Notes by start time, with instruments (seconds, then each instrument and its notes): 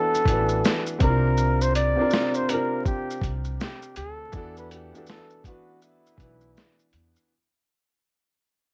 Already playing: upright piano E3 B3 D4 F#4 A4 B4, flugelhorn A4
0.15 shaker
0.26 upright bass A1, upright piano E3 B3 D4, kick, closed hi-hat, shaker
0.30 upright piano F#4 B4
0.49 shaker
0.65 snare, shaker
0.87 shaker
0.99 upright bass C2, upright piano C3 C4 D4, flugelhorn A#4, kick, closed hi-hat, shaker
1.03 upright piano E4 A#4
1.09 upright piano F4
1.37 shaker
1.61 flugelhorn C5, shaker
1.75 flugelhorn D5, closed hi-hat, shaker
1.96 upright piano C3 C4 D4
2.00 upright piano F4 A#4
2.10 snare, shaker
2.34 flugelhorn C5, shaker
2.48 upright piano C3 C4 D4, flugelhorn A#4, closed hi-hat, shaker
2.53 upright piano F4 A#4
2.86 flugelhorn G4, kick, shaker
3.10 shaker
3.21 upright bass C2, kick, closed hi-hat, shaker
3.44 shaker
3.60 flugelhorn G4, snare, shaker
3.82 shaker
3.96 upright bass D2, flugelhorn A4, closed hi-hat, shaker
4.32 upright bass E2, upright piano E3 B3 D4, kick, shaker
4.36 upright piano F#4 A4
4.57 flugelhorn B4, shaker
4.71 flugelhorn G4, closed hi-hat, shaker
4.93 upright piano E3 B3 D4, shaker
4.97 upright piano F#4 A4
5.07 flugelhorn A4, snare, shaker
5.30 shaker
5.44 upright piano E3 B3 D4, flugelhorn F#4, kick, closed hi-hat, shaker
5.48 upright piano F#4 B4
5.82 flugelhorn E4, shaker
6.07 shaker
6.17 upright bass B1, upright piano E3 B3 D4, kick, closed hi-hat, shaker
6.21 upright piano F#4 B4
6.41 shaker
6.57 snare, shaker
6.79 shaker
6.93 upright bass E2, closed hi-hat, shaker
7.16 shaker